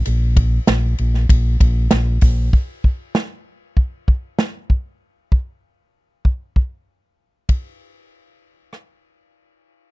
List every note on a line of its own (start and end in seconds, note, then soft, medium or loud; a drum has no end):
0.05 0.57 A#1 medium
0.05 hi-hat pedal medium
0.05 ride medium
0.37 kick medium
0.37 ride medium
0.67 0.93 A#1 loud
0.67 snare loud
0.67 ride medium
0.98 1.24 A#1 medium
0.98 ride medium
1.14 snare soft
1.29 1.55 A#1 loud
1.29 kick medium
1.29 ride medium
1.60 1.86 A#1 loud
1.60 kick medium
1.60 ride medium
1.91 2.17 A#1 loud
1.91 snare loud
1.91 ride medium
2.21 2.48 A#1 loud
2.21 kick medium
2.21 open hi-hat medium
2.21 ride medium
2.53 kick medium
2.84 kick medium
3.15 snare medium
3.77 kick medium
4.08 kick medium
4.39 snare medium
4.70 kick medium
5.32 kick medium
6.25 kick medium
6.56 kick medium
7.49 kick medium
7.49 ride medium
8.73 cross-stick soft